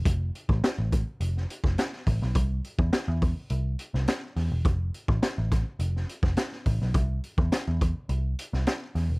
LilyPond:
<<
  \new Staff \with { instrumentName = "Picked electric bass" } { \clef bass \time 4/4 \key c \major \tempo 4 = 104 f,,8 r16 a,,16 r16 a,,8 r16 f,,8 r16 f,,16 r8 a,,16 b,,16 | c,8 r16 e,16 r16 e,8 r16 c,8 r16 c,16 r8 e,16 e,,16 | f,,8 r16 a,,16 r16 a,,8 r16 f,,8 r16 f,,16 r8 a,,16 b,,16 | c,8 r16 e,16 r16 e,8 r16 c,8 r16 c,16 r8 e,16 e,,16 | }
  \new DrumStaff \with { instrumentName = "Drums" } \drummode { \time 4/4 <hh bd>8 hh16 bd16 <hh sn>8 <hh bd>8 hh16 sn16 hh16 <bd sn>16 <hh sn>16 sn16 <hho bd>16 sn16 | <hh bd>8 hh16 bd16 <hh sn>8 <hho bd>8 hh8 hh16 sn16 <hh sn>8 <hho sn>8 | <hh bd>8 hh16 bd16 <hh sn>8 <hh bd sn>8 hh16 sn16 hh16 <bd sn>16 <hh sn>16 sn16 <hho bd>16 sn16 | <hh bd>8 hh16 bd16 <hh sn>8 <hh bd>8 hh8 hh16 sn16 <hh sn>8 <hho sn>8 | }
>>